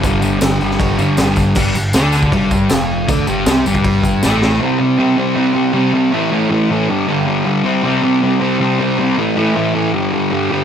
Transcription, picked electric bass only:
\new Staff \with { instrumentName = "Picked electric bass" } { \clef bass \time 4/4 \key g \mixolydian \tempo 4 = 158 g,,4 g,,8 g,,8 g,,8 g,,8 g,,8 g,,8 | g,,8 g,,8 d,4 g,,4 f,,4 | d,8 g,,8 c,8 g,,4. a,,4 | r1 |
r1 | r1 | r1 | }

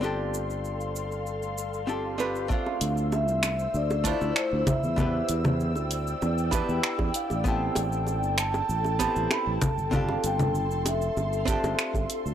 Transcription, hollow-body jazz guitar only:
\new Staff \with { instrumentName = "Hollow-body jazz guitar" } { \time 4/4 \key d \dorian \tempo 4 = 97 <c' d' f' g' a'>2~ <c' d' f' g' a'>8 r8 <c' d' f' g' a'>8 <c' d' f' g' b'>8 | <a c' d' f' c''>2~ <a c' d' f' c''>8 <a d' e' f' c''>4. | <b d' e' g' b'>2~ <b d' e' g' b'>8 <b d' e' g' b'>4. | <b c' e' g' a'>2~ <b c' e' g' a'>8 <b c' e' g' a'>4 r8 |
<c' d' f' g' a'>2~ <c' d' f' g' a'>8 <c' d' f' g' a'>4. | }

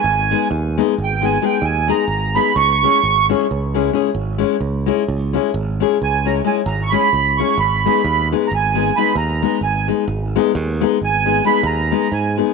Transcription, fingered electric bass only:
\new Staff \with { instrumentName = "Fingered electric bass" } { \clef bass \time 11/8 \key gis \minor \tempo 4 = 132 gis,,4 dis,4 gis,,4. dis,4 gis,,4 | cis,4 gis,,4 cis,4. gis,,4 cis,4 | cis,4 gis,,4 cis,4. gis,,4 cis,4 | gis,,4 dis,4 gis,,4. dis,4 gis,,4 |
gis,,4 dis,4 gis,,4. dis,4 gis,4 | }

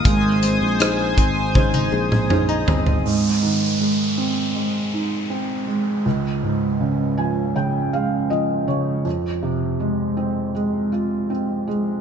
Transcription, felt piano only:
\new Staff \with { instrumentName = "Felt piano" } { \time 4/4 \key aes \major \tempo 4 = 80 aes4 <ees' aes' c''>4 <ees' aes' c''>4 <ees' aes' c''>4 | aes,8 ees8 aes8 c'8 aes8 ees'8 c'8 aes8 | des,8 aes,8 des8 <f aes''>8 <des g''>8 <aes f''>8 <f ees''>8 <des des''>8 | f,8 c8 aes8 c'8 aes8 f'8 c'8 aes8 | }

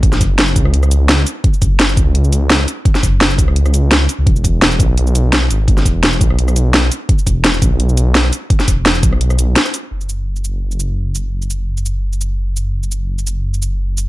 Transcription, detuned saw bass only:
\new Staff \with { instrumentName = "Detuned saw bass" } { \clef bass \time 4/4 \key e \mixolydian \tempo 4 = 170 a,,8 fis,,4 cis,2 r8 | r8 fis,,4 cis,2 r8 | r8 fis,,4 cis,2 r16 cis,16 | e,,4. b,,2 gis,,8~ |
gis,,8 e,,4 b,,2 r8 | r8 e,,4 b,,2 r8 | r8 e,,4 b,,4~ b,,16 b,,16 r4 | fis,,1~ |
fis,,1~ | fis,,1 | }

